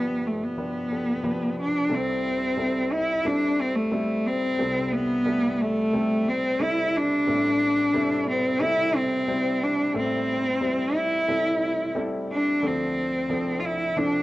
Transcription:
0.00 1.88 G1 soft
0.00 1.88 G2 soft
0.00 0.57 F3 medium
0.00 0.28 B3 medium
0.00 0.57 D4 medium
0.00 0.57 G4 medium
0.00 0.58 B4 medium
0.27 0.46 A3 medium
0.44 1.60 B3 medium
0.57 0.87 F3 soft
0.57 0.87 D4 soft
0.57 0.87 G4 soft
0.57 0.88 B4 medium
0.91 1.21 F3 soft
0.91 1.21 D4 soft
0.91 1.21 G4 soft
0.91 1.21 A4 soft
1.23 1.84 F3 medium
1.23 1.84 D4 soft
1.23 1.84 G4 medium
1.23 1.84 B4 medium
1.60 1.96 D4 medium
1.89 4.55 C2 soft
1.89 4.55 C3 soft
1.89 2.51 G3 medium
1.89 2.51 C4 medium
1.89 2.51 E4 medium
1.89 2.51 A4 medium
1.94 2.95 C4 medium
2.57 3.18 G3 medium
2.57 3.18 C4 soft
2.57 3.19 E4 soft
2.57 3.19 A4 medium
2.93 3.28 E4 medium
3.25 3.86 G3 medium
3.25 3.85 C4 medium
3.25 3.63 D4 medium
3.25 3.86 E4 medium
3.25 3.86 A4 medium
3.61 3.77 C4 medium
3.75 4.29 A3 medium
3.92 4.53 G3 medium
3.92 4.52 C4 medium
3.92 4.53 E4 medium
3.92 4.53 A4 medium
4.27 4.94 C4 medium
4.59 7.23 C2 soft
4.59 7.23 C3 medium
4.59 5.20 G3 medium
4.59 5.20 C4 medium
4.59 5.20 E4 medium
4.59 5.20 A4 medium
4.93 5.63 B3 medium
5.26 5.86 G3 medium
5.26 5.86 A3 medium
5.26 5.87 E4 medium
5.26 5.87 A4 medium
5.61 6.30 A3 medium
5.93 6.54 G3 medium
5.93 6.54 C4 medium
5.93 6.54 E4 medium
5.93 6.54 A4 medium
6.28 6.64 C4 medium
6.60 7.20 G3 medium
6.60 7.21 C4 medium
6.60 7.21 E4 medium
6.60 6.99 E4 medium
6.60 7.21 A4 medium
6.97 8.28 D4 medium
7.27 9.91 A1 soft
7.27 9.91 A2 medium
7.27 7.88 G3 medium
7.27 7.87 C4 medium
7.27 7.88 E4 medium
7.27 7.88 A4 medium
7.94 8.54 G3 medium
7.94 8.55 C4 medium
7.94 8.55 E4 medium
7.94 8.55 A4 medium
8.29 8.62 C4 medium
8.60 9.21 G3 medium
8.60 9.21 C4 medium
8.60 8.98 E4 medium
8.60 9.22 E4 medium
8.60 9.22 A4 medium
8.97 9.65 C4 medium
9.28 9.88 G3 medium
9.28 9.88 C4 medium
9.28 9.89 E4 medium
9.28 9.89 C5 medium
9.63 9.96 D4 medium
9.94 12.59 A1 soft
9.94 12.59 A2 medium
9.94 10.55 G3 medium
9.94 10.55 C4 medium
9.94 10.55 E4 medium
9.94 10.55 A4 medium
9.98 10.98 C4 medium
10.61 11.22 G3 medium
10.61 11.22 C4 medium
10.61 11.22 E4 medium
10.61 11.22 C5 medium
10.97 11.97 E4 medium
11.28 11.89 G3 medium
11.28 11.89 C4 medium
11.28 11.90 E4 medium
11.28 11.90 A4 medium
11.95 12.56 G3 medium
11.95 12.57 C4 medium
11.95 12.57 E4 medium
11.95 12.57 A4 medium
12.32 12.67 D4 medium
12.62 14.23 D2 soft
12.62 14.23 D3 medium
12.62 13.24 F3 medium
12.62 13.24 C4 medium
12.62 13.61 C4 medium
12.62 13.24 D4 soft
12.62 13.24 A4 medium
13.29 13.91 F3 medium
13.29 13.91 C4 medium
13.29 13.91 D4 medium
13.29 13.91 A4 medium
13.60 13.67 F4 medium
13.66 13.99 E4 medium
13.96 14.23 F3 medium
13.96 14.23 C4 medium
13.96 14.23 D4 medium
13.96 14.23 A4 medium

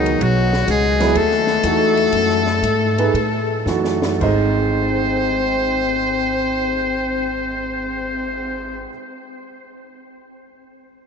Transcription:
0.00 0.19 C#2 medium
0.00 0.23 D#3 medium
0.00 0.47 F#3 medium
0.00 0.47 B3 medium
0.00 0.24 D#4 medium
0.00 0.47 F#4 medium
0.00 0.47 G#4 medium
0.06 ride soft
0.20 0.66 B1 medium
0.20 0.67 F#3 medium
0.20 0.69 F#4 loud
0.20 ride medium
0.53 snare soft
0.67 1.14 C#2 medium
0.67 1.17 G#3 medium
0.67 1.18 G#4 loud
0.67 hi-hat pedal medium
0.67 ride medium
1.00 1.14 F#3 medium
1.00 1.14 B3 medium
1.00 1.14 E4 medium
1.00 1.14 G#4 medium
1.00 snare medium
1.00 ride soft
1.15 1.62 D#2 medium
1.15 3.66 A3 medium
1.15 3.67 A4 loud
1.15 ride medium
1.31 snare soft
1.47 snare soft
1.63 2.11 E2 medium
1.63 2.40 E3 medium
1.63 2.40 A3 medium
1.63 2.40 D#4 medium
1.63 2.40 F#4 medium
1.63 hi-hat pedal medium
1.63 ride medium
1.97 ride soft
2.12 2.61 F#2 medium
2.12 ride medium
2.29 snare soft
2.46 snare soft
2.62 3.12 G#2 medium
2.62 hi-hat pedal soft
2.62 ride medium
2.98 3.12 A3 medium
2.98 3.13 D#4 medium
2.98 3.13 G#4 medium
2.98 3.13 B4 medium
2.98 ride soft
3.14 3.65 A2 medium
3.14 ride medium
3.66 4.18 F#2 medium
3.66 4.21 E3 medium
3.66 4.21 A3 medium
3.66 4.21 D#4 medium
3.66 4.21 F#4 medium
3.66 snare soft
3.66 hi-hat pedal soft
3.84 snare soft
4.02 snare medium
4.21 8.84 G#1 medium
4.21 8.88 G#2 medium
4.21 8.89 G#3 medium
4.21 8.85 C4 medium
4.21 8.90 D#4 medium
4.21 8.86 C5 medium
4.21 8.90 C5 medium
4.21 8.91 D#5 medium
4.21 kick medium
4.21 crash medium
4.59 cymbal swell soft

